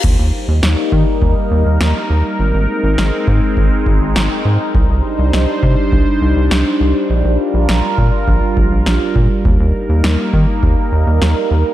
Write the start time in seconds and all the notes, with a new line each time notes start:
0.04 D#2 G3 A#3 D#4 A#4, kick, crash
0.19 D#2
0.48 D#2
0.63 D#2, snare
0.92 D#3, kick
1.22 D#2, kick
1.51 D#2
1.66 D#2
1.81 D#2, snare
2.10 D#2
2.39 G#1 G#3 C4 D#4
2.54 G#1
2.84 G#1
2.98 G#1, snare
3.28 G#2, kick
3.57 G#1, kick
3.86 G#1, kick
4.01 G#1
4.16 G#1, snare
4.45 G#2
4.75 C2 G3 D4 C5, kick
4.89 C2
5.19 C2
5.33 C2, snare
5.63 C3, kick
5.92 C2, kick
6.22 C2
6.36 C2
6.51 C2, snare
6.81 C2
7.10 A#1 F4 A#4
7.25 A#1
7.54 A#1
7.69 A#1, snare
7.98 A#2, kick
8.28 A#1, kick
8.57 A#1, kick
8.72 A#1
8.86 A#1, snare
9.16 A#2, kick
9.45 D#2 A#3 D#4 A#4, kick
9.60 D#2
9.89 D#2
10.04 D#2, snare
10.33 D#3, kick
10.63 D#2, kick
10.92 D#2
11.07 D#2
11.22 D#2, snare
11.51 D#2